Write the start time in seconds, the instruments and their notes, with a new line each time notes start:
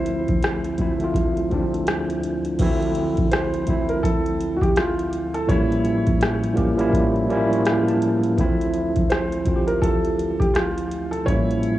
Already playing: tine electric piano D2 F3 A3 C4 E4, felt piano C5
0.06 closed hi-hat
0.28 kick, closed hi-hat
0.42 cross-stick, closed hi-hat
0.64 closed hi-hat
0.77 tine electric piano D2 F3 A3 C4, kick, closed hi-hat
0.81 tine electric piano E4
0.99 tine electric piano D2 F3 A3 C4, closed hi-hat
1.04 tine electric piano F4
1.14 kick, closed hi-hat
1.37 closed hi-hat
1.49 tine electric piano D2 F3 A3 C4, kick, closed hi-hat
1.54 tine electric piano D4
1.74 closed hi-hat
1.87 cross-stick, closed hi-hat
2.10 closed hi-hat
2.23 closed hi-hat
2.45 closed hi-hat
2.58 tine electric piano D2 E3 A3 C4, kick, closed hi-hat, crash
2.63 tine electric piano F3 E4
2.82 closed hi-hat
2.95 closed hi-hat
3.17 kick, closed hi-hat
3.32 felt piano C5, cross-stick, closed hi-hat
3.54 closed hi-hat
3.66 tine electric piano D2 F3 A3 C4, kick, closed hi-hat
3.70 tine electric piano E4
3.89 felt piano A#4, closed hi-hat
4.03 felt piano A4, kick, closed hi-hat
4.26 closed hi-hat
4.41 closed hi-hat
4.57 felt piano F#4
4.62 felt piano G4, kick, closed hi-hat
4.76 felt piano F4, cross-stick, closed hi-hat
4.99 closed hi-hat
5.13 closed hi-hat
5.34 felt piano A4, closed hi-hat
5.47 tine electric piano A2 F3 G3 A#3 C#4, felt piano C#5, kick, closed hi-hat
5.51 tine electric piano E4
5.72 closed hi-hat
5.85 closed hi-hat
6.07 kick, closed hi-hat
6.21 cross-stick, closed hi-hat
6.44 closed hi-hat
6.53 tine electric piano A2 F3 G3 A#3 C#4, closed hi-hat
6.58 tine electric piano G4, kick
6.76 tine electric piano A2 F3 G3 A#3 C#4, closed hi-hat
6.81 tine electric piano E4
6.93 kick, closed hi-hat
7.16 closed hi-hat
7.27 tine electric piano A2 F3 G3 A#3 C#4 D5, closed hi-hat
7.32 tine electric piano E4
7.52 tine electric piano C#5, closed hi-hat
7.65 tine electric piano F5, cross-stick, closed hi-hat
7.88 tine electric piano A5, closed hi-hat
8.02 closed hi-hat
8.23 closed hi-hat
8.36 tine electric piano D2 E3 A3 C4, kick, closed hi-hat
8.40 tine electric piano F3 E4
8.61 closed hi-hat
8.73 closed hi-hat
8.96 kick, closed hi-hat
9.10 felt piano C5, cross-stick, closed hi-hat
9.32 closed hi-hat
9.45 tine electric piano D2 F3 A3 C4, kick, closed hi-hat
9.49 tine electric piano F4
9.56 tine electric piano G4
9.67 felt piano A#4, closed hi-hat
9.82 felt piano A4, kick, closed hi-hat
10.05 closed hi-hat
10.19 closed hi-hat
10.40 felt piano G4, kick, closed hi-hat
10.54 felt piano F4, cross-stick, closed hi-hat
10.78 closed hi-hat
10.92 closed hi-hat
11.11 felt piano A4, closed hi-hat
11.25 tine electric piano A2 F3 G3 A#3 C#4, felt piano C#5, kick, closed hi-hat
11.29 tine electric piano E4
11.51 closed hi-hat
11.63 closed hi-hat